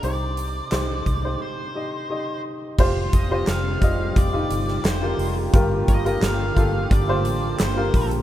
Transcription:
<<
  \new Staff \with { instrumentName = "Lead electric guitar" } { \time 4/4 \key f \mixolydian \tempo 4 = 87 d''2 c''4. r8 | r8 ees''8 f''4 d''4 c''8. r16 | r8 ees''8 f''4 d''4 c''8. r16 | }
  \new Staff \with { instrumentName = "Upright piano" } { \time 4/4 \key f \mixolydian <ees' g' c''>8. r16 <ees' g' c''>8 r16 <ees' g' c''>8 r16 <ees' g' ees''>8 <ees' g' ees''>8. r16 | <f' g' c''>8 r16 <f' g' c''>8 r16 <f' g' ees''>8 r16 <ees' f' g'>8. r16 <f' g' bes'>8 r16 | <f' g' bes'>8 r16 <f' g' bes'>8 r16 <f' g' a'>8 r16 <f' g' c''>8. r16 <f' g' bes'>8 r16 | }
  \new Staff \with { instrumentName = "Upright piano" } { \clef bass \time 4/4 \key f \mixolydian c4. r2 r8 | r1 | g,4. r2 r8 | }
  \new Staff \with { instrumentName = "Analog synth pad" } { \clef bass \time 4/4 \key f \mixolydian << { r1 | <f' g'>1~ | <f' g'>1 | } \\ { r1 | <c g>1 | <d bes>1 | } >> }
  \new Staff \with { instrumentName = "Fingered electric bass" } { \clef bass \time 4/4 \key f \mixolydian c,4 c,8 c,8 r2 | f,,8 f,,8 f,,8 f,,8 f,,8 g,,8 f,,8 f,,8 | g,,8 g,,8 g,,8 g,,8 g,,8 a,,8 g,,8 bes,,8 | }
  \new DrumStaff \with { instrumentName = "Drums" } \drummode { \time 4/4 hh8 hh8 <hc hh sn>8 <hh bd>8 r4 r4 | <cymc bd>8 <hh bd>8 <hc hh sn>8 <hh bd>8 <hh bd>8 hh16 sn16 <hc hh sn>8 hho8 | <hh bd>8 <hh bd>16 hh16 <hc hh sn>8 <hh bd>8 <hh bd>8 hh8 <hc hh sn>8 <hho bd>16 hh16 | }
>>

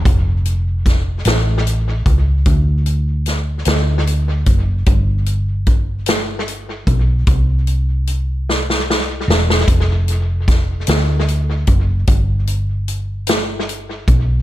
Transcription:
<<
  \new Staff \with { instrumentName = "Fingered electric bass" } { \clef bass \time 6/8 \key g \dorian \tempo 4. = 50 f,,4. a,,4 cis,8 | d,4. d,4 fis,,8 | g,,2~ g,,8 b,,8 | c,2~ c,8 e,,8 |
f,,4. d,4 fis,,8 | g,,2~ g,,8 b,,8 | }
  \new DrumStaff \with { instrumentName = "Drums" } \drummode { \time 6/8 <hh bd>8 hh8 <hh bd sn>8 <hh sn>8 hh8 <hh bd>8 | <hh bd>8 hh8 <hh sn>8 <hh sn>8 hh8 <hh bd>8 | <hh bd>8 hh8 <hh bd>8 <hh sn>8 hh8 <hh bd>8 | <hh bd>8 hh8 hh8 sn16 sn16 sn8 sn16 sn16 |
<hh bd>8 hh8 <hh bd sn>8 <hh sn>8 hh8 <hh bd>8 | <hh bd>8 hh8 hh8 <hh sn>8 hh8 <hh bd>8 | }
>>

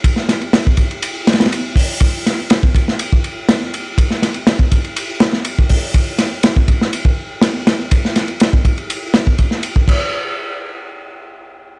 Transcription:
\new DrumStaff \with { instrumentName = "Drums" } \drummode { \time 4/4 \tempo 4 = 122 <bd cymr>16 sn16 <cymr sn>16 cymr16 <cymr sn>16 bd16 <bd cymr>16 cymr16 cymr8 <cymr sn>32 <cymr sn>32 <cymr sn>32 <cymr sn>32 cymr8 <hho bd>8 | <bd cymr>8 <cymr sn>8 <cymr sn>16 bd16 <bd cymr>16 sn16 cymr16 bd16 cymr8 <cymr sn>8 cymr8 | <bd cymr>16 sn16 <cymr sn>16 cymr16 <cymr sn>16 bd16 <bd cymr>16 cymr16 cymr8 <cymr sn>16 sn16 cymr16 bd16 <hho bd>8 | <bd cymr>8 <cymr sn>8 <cymr sn>16 bd16 <bd cymr>16 sn16 cymr16 bd8. <cymr sn>8 <cymr sn>8 |
<bd cymr>16 sn16 <cymr sn>16 cymr16 <cymr sn>16 bd16 <bd cymr>16 cymr16 cymr8 <cymr sn>16 bd16 <bd cymr>16 sn16 cymr16 bd16 | <cymc bd>4 r4 r4 r4 | }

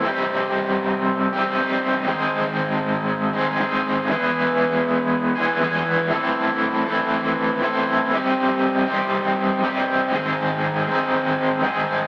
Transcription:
\new Staff \with { instrumentName = "Overdriven electric guitar" } { \time 4/4 \key c \major \tempo 4 = 119 <c g c' ees' g'>2~ <c g c' ees' g'>8 <c g c' ees' g'>8 <c g c' ees' g'>4 | <gis, dis gis bis dis' gis'>2~ <gis, dis gis bis dis' gis'>8 <gis, dis gis bis dis' gis'>8 <gis, dis gis bis dis' gis'>4 | <e, e gis b e' gis'>2~ <e, e gis b e' gis'>8 <e, e gis b e' gis'>8 <e, e gis b e' gis'>4 | <a, e c' e' a'>4. <a, e c' e' a'>4. <a, e c' e' a'>4 |
<c g c' ees' g'>4. <c g c' ees' g'>4. <c g c' ees' g'>4 | <gis, dis gis bis dis' gis'>4. <gis, dis gis bis dis' gis'>4. <gis, dis gis bis dis' gis'>4 | }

